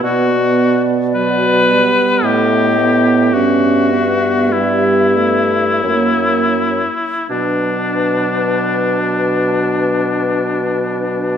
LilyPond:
<<
  \new Staff \with { instrumentName = "Flute" } { \time 3/4 \key b \minor \tempo 4 = 46 d''4. r8 dis''4 | e''2 cis''8 r8 | b'2. | }
  \new Staff \with { instrumentName = "Oboe" } { \time 3/4 \key b \minor fis'8 r8 b'4 g'4 | fis'4 e'2 | d'2. | }
  \new Staff \with { instrumentName = "Clarinet" } { \time 3/4 \key b \minor b2.~ | b4. r8 ais8 r8 | d'2. | }
  \new Staff \with { instrumentName = "French horn" } { \time 3/4 \key b \minor b8 r8 fis8 g8 a8 b8 | cis'8 b8 g8 a8 ais8 r8 | fis2. | }
  \new Staff \with { instrumentName = "Bassoon" } { \clef bass \time 3/4 \key b \minor b,4. r8 a,4 | g,2 fis,8 r8 | b,2. | }
>>